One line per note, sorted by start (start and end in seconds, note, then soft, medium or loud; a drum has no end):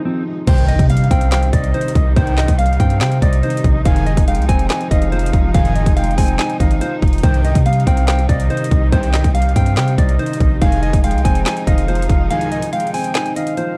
0.00 0.43 C3 medium
0.00 0.50 D#3 medium
0.00 0.05 F3 medium
0.00 0.44 F3 medium
0.00 0.26 G#3 medium
0.00 0.44 G#3 medium
0.00 0.48 C4 medium
0.00 0.43 D#4 medium
0.00 0.47 D#4 medium
0.05 0.47 F3 medium
0.05 0.23 C4 medium
0.47 0.78 C2 loud
0.47 0.78 G2 medium
0.47 1.52 C3 medium
0.47 7.19 C3 medium
0.47 0.78 D#3 loud
0.47 3.82 D#3 medium
0.47 3.82 G3 medium
0.47 10.58 D#4 medium
0.47 0.65 C5 medium
0.47 0.87 G5 loud
0.47 kick loud
0.47 closed hi-hat medium
0.47 crash loud
0.47 impact medium
0.58 closed hi-hat medium
0.68 0.86 D#5 medium
0.68 closed hi-hat medium
0.79 1.10 C3 loud
0.79 kick medium
0.79 closed hi-hat medium
0.90 1.95 G3 medium
0.90 1.49 F5 medium
0.90 1.07 F5 medium
0.90 closed hi-hat medium
0.97 closed hi-hat medium
1.04 closed hi-hat soft
1.11 1.51 C2 loud
1.11 2.17 C4 loud
1.11 1.28 G5 medium
1.11 kick medium
1.11 closed hi-hat medium
1.21 closed hi-hat medium
1.32 2.38 C5 medium
1.32 1.49 G5 medium
1.32 snare loud
1.32 clap medium
1.32 closed hi-hat medium
1.43 closed hi-hat medium
1.53 1.73 C2 loud
1.53 2.15 C3 medium
1.53 1.71 D5 medium
1.53 2.13 D#5 medium
1.53 kick loud
1.53 closed hi-hat medium
1.64 closed hi-hat medium
1.74 2.80 D#3 medium
1.74 1.92 C5 medium
1.74 closed hi-hat soft
1.81 closed hi-hat medium
1.88 closed hi-hat medium
1.95 2.16 C2 loud
1.95 kick loud
1.95 closed hi-hat medium
2.16 2.47 C2 loud
2.16 2.47 G2 loud
2.16 3.20 C3 medium
2.16 2.47 D#3 loud
2.16 2.34 C5 medium
2.16 2.56 G5 loud
2.16 kick loud
2.16 closed hi-hat medium
2.27 closed hi-hat medium
2.38 2.55 D#5 medium
2.38 snare loud
2.38 clap medium
2.38 closed hi-hat medium
2.48 2.79 C2 loud
2.48 kick medium
2.48 closed hi-hat medium
2.58 3.64 G3 medium
2.58 2.76 F5 medium
2.58 3.18 F5 medium
2.58 closed hi-hat medium
2.66 closed hi-hat medium
2.73 closed hi-hat soft
2.80 3.02 G2 loud
2.80 3.85 C4 loud
2.80 2.97 G5 medium
2.80 kick medium
2.80 closed hi-hat medium
2.90 closed hi-hat medium
3.01 3.21 C3 loud
3.01 3.85 C5 medium
3.01 3.19 G5 medium
3.01 snare loud
3.01 clap medium
3.01 closed hi-hat medium
3.12 closed hi-hat medium
3.22 3.42 C2 loud
3.22 3.85 C3 medium
3.22 3.40 D5 medium
3.22 3.81 D#5 medium
3.22 kick medium
3.22 closed hi-hat medium
3.33 closed hi-hat medium
3.43 3.84 D#3 medium
3.43 3.61 C5 medium
3.43 closed hi-hat soft
3.50 closed hi-hat medium
3.57 closed hi-hat medium
3.64 3.85 A#1 loud
3.64 kick loud
3.64 closed hi-hat medium
3.85 4.16 F1 loud
3.85 4.16 C2 loud
3.85 4.16 G#2 loud
3.85 4.89 D#3 medium
3.85 4.16 D#3 loud
3.85 7.20 F3 medium
3.85 7.20 G#3 medium
3.85 4.03 F5 medium
3.85 4.25 G#5 loud
3.85 kick loud
3.85 closed hi-hat medium
3.96 closed hi-hat medium
4.06 4.24 D#5 medium
4.06 closed hi-hat medium
4.17 4.40 F1 loud
4.17 kick medium
4.17 closed hi-hat medium
4.28 5.33 G#3 medium
4.28 4.45 F5 medium
4.28 4.87 G5 medium
4.28 closed hi-hat medium
4.35 4.48 C2 loud
4.35 closed hi-hat medium
4.42 closed hi-hat soft
4.49 4.69 F1 loud
4.49 5.54 C4 loud
4.49 4.66 G#5 medium
4.49 kick medium
4.49 closed hi-hat medium
4.59 closed hi-hat medium
4.70 5.76 D#4 medium
4.70 4.87 G#5 medium
4.70 snare loud
4.70 clap medium
4.70 closed hi-hat medium
4.81 closed hi-hat medium
4.91 5.32 F1 loud
4.91 5.53 D#3 medium
4.91 5.09 D#5 medium
4.91 5.51 F5 medium
4.91 kick loud
4.91 closed hi-hat medium
5.02 closed hi-hat medium
5.12 6.18 F3 medium
5.12 5.30 C5 medium
5.12 closed hi-hat soft
5.19 closed hi-hat medium
5.26 closed hi-hat medium
5.33 5.54 F1 loud
5.33 kick loud
5.33 closed hi-hat medium
5.54 5.85 F1 loud
5.54 5.85 C2 loud
5.54 5.85 G#2 loud
5.54 6.58 D#3 medium
5.54 5.85 D#3 loud
5.54 5.72 F5 medium
5.54 5.94 G#5 loud
5.54 kick loud
5.54 closed hi-hat medium
5.65 closed hi-hat medium
5.76 5.93 D#5 medium
5.76 closed hi-hat medium
5.86 6.17 F1 loud
5.86 kick medium
5.86 closed hi-hat medium
5.96 7.02 G#3 medium
5.96 6.14 F5 medium
5.96 6.57 G5 medium
5.96 closed hi-hat medium
6.04 closed hi-hat medium
6.11 closed hi-hat soft
6.18 6.38 F1 loud
6.18 7.24 C4 loud
6.18 6.35 G#5 medium
6.18 kick medium
6.18 open hi-hat medium
6.28 closed hi-hat medium
6.39 7.23 D#4 medium
6.39 6.56 G#5 medium
6.39 snare loud
6.39 clap medium
6.39 closed hi-hat medium
6.50 closed hi-hat medium
6.60 6.80 G#1 loud
6.60 7.23 D#3 medium
6.60 6.78 D#5 medium
6.60 6.95 F5 medium
6.60 kick loud
6.60 closed hi-hat medium
6.71 closed hi-hat medium
6.81 7.23 F3 medium
6.81 6.99 C5 medium
6.81 closed hi-hat medium
7.02 7.23 F1 loud
7.02 kick loud
7.02 closed hi-hat soft
7.08 closed hi-hat soft
7.13 closed hi-hat medium
7.18 closed hi-hat medium
7.23 7.54 C2 loud
7.23 7.54 G2 medium
7.23 13.77 C3 medium
7.23 8.28 C3 medium
7.23 10.58 D#3 medium
7.23 7.54 D#3 loud
7.23 10.58 G3 medium
7.23 7.41 C5 medium
7.23 7.63 G5 loud
7.23 kick loud
7.23 closed hi-hat medium
7.34 closed hi-hat medium
7.45 7.62 D#5 medium
7.45 closed hi-hat medium
7.55 7.86 C3 loud
7.55 kick medium
7.55 closed hi-hat medium
7.66 8.71 G3 medium
7.66 8.25 F5 loud
7.66 7.83 F5 medium
7.66 closed hi-hat medium
7.73 closed hi-hat medium
7.80 closed hi-hat soft
7.87 8.27 C2 loud
7.87 8.93 C4 loud
7.87 8.05 G5 medium
7.87 kick medium
7.87 closed hi-hat medium
7.97 closed hi-hat medium
8.08 9.14 C5 medium
8.08 8.25 G5 medium
8.08 snare loud
8.08 clap medium
8.08 closed hi-hat medium
8.19 closed hi-hat medium
8.29 8.49 C2 loud
8.29 8.91 C3 medium
8.29 8.47 D5 medium
8.29 8.89 D#5 medium
8.29 kick medium
8.29 closed hi-hat medium
8.40 closed hi-hat medium
8.50 9.56 D#3 medium
8.50 8.68 C5 medium
8.50 closed hi-hat soft
8.57 closed hi-hat medium
8.64 closed hi-hat medium
8.71 8.92 C2 loud
8.71 kick loud
8.71 closed hi-hat medium
8.92 9.23 C2 loud
8.92 9.23 G2 loud
8.92 9.97 C3 medium
8.92 9.23 D#3 loud
8.92 9.10 C5 medium
8.92 9.32 G5 loud
8.92 kick loud
8.92 closed hi-hat medium
9.03 closed hi-hat medium
9.14 9.31 D#5 medium
9.14 snare loud
9.14 clap medium
9.14 closed hi-hat medium
9.24 9.55 C2 loud
9.24 kick medium
9.24 closed hi-hat medium
9.35 10.40 G3 medium
9.35 9.52 F5 medium
9.35 9.95 F5 medium
9.35 closed hi-hat medium
9.42 closed hi-hat medium
9.49 closed hi-hat soft
9.56 9.78 G2 loud
9.56 10.62 C4 loud
9.56 9.74 G5 medium
9.56 kick medium
9.56 closed hi-hat medium
9.66 closed hi-hat medium
9.77 9.97 C3 loud
9.77 10.61 C5 medium
9.77 9.95 G5 medium
9.77 snare loud
9.77 clap medium
9.77 closed hi-hat medium
9.88 closed hi-hat medium
9.98 10.18 C2 loud
9.98 10.61 C3 medium
9.98 10.16 D5 medium
9.98 10.58 D#5 medium
9.98 kick medium
9.98 closed hi-hat medium
10.09 closed hi-hat medium
10.19 10.60 D#3 medium
10.19 10.37 C5 medium
10.19 closed hi-hat soft
10.26 closed hi-hat medium
10.33 closed hi-hat medium
10.40 10.61 A#1 loud
10.40 kick loud
10.40 closed hi-hat medium
10.61 10.92 F1 loud
10.61 10.92 C2 loud
10.61 10.92 G#2 medium
10.61 11.66 D#3 medium
10.61 10.92 D#3 loud
10.61 13.77 F3 medium
10.61 13.77 G#3 medium
10.61 13.77 D#4 medium
10.61 10.79 F5 medium
10.61 11.01 G#5 loud
10.61 kick loud
10.61 closed hi-hat medium
10.72 closed hi-hat medium
10.83 11.00 D#5 medium
10.83 closed hi-hat medium
10.93 11.16 F1 loud
10.93 kick medium
10.93 closed hi-hat medium
11.04 12.09 G#3 medium
11.04 11.21 F5 medium
11.04 11.63 G5 medium
11.04 closed hi-hat medium
11.11 11.24 C2 loud
11.11 closed hi-hat medium
11.18 closed hi-hat soft
11.25 11.45 F1 loud
11.25 12.30 C4 loud
11.25 11.42 G#5 medium
11.25 kick medium
11.25 closed hi-hat medium
11.35 closed hi-hat medium
11.46 12.52 D#4 medium
11.46 11.63 G#5 medium
11.46 snare loud
11.46 clap medium
11.46 closed hi-hat medium
11.57 closed hi-hat medium
11.67 12.08 F1 loud
11.67 12.29 D#3 medium
11.67 11.85 D#5 medium
11.67 12.27 F5 medium
11.67 kick loud
11.67 closed hi-hat medium
11.78 closed hi-hat medium
11.88 12.94 F3 medium
11.88 12.06 C5 medium
11.88 closed hi-hat soft
11.95 closed hi-hat medium
12.02 closed hi-hat medium
12.09 12.30 F1 loud
12.09 kick loud
12.09 closed hi-hat medium
12.30 12.61 C2 loud
12.30 12.61 G#2 loud
12.30 13.34 D#3 medium
12.30 12.61 D#3 loud
12.30 12.48 F5 medium
12.30 12.70 G#5 loud
12.30 closed hi-hat medium
12.41 closed hi-hat medium
12.52 12.69 D#5 medium
12.52 closed hi-hat medium
12.62 closed hi-hat medium
12.72 13.77 G#3 medium
12.72 12.90 F5 medium
12.72 13.33 G5 medium
12.72 closed hi-hat medium
12.80 closed hi-hat medium
12.87 closed hi-hat soft
12.94 13.77 C4 medium
12.94 13.11 G#5 medium
12.94 open hi-hat medium
13.04 closed hi-hat medium
13.15 13.77 D#4 medium
13.15 13.33 G#5 medium
13.15 snare loud
13.15 clap medium
13.15 closed hi-hat medium
13.26 closed hi-hat medium
13.36 13.77 D#3 medium
13.36 13.54 D#5 medium
13.36 13.77 F5 medium
13.36 closed hi-hat medium
13.47 closed hi-hat medium
13.57 13.77 F3 medium
13.57 13.75 C5 medium
13.57 closed hi-hat medium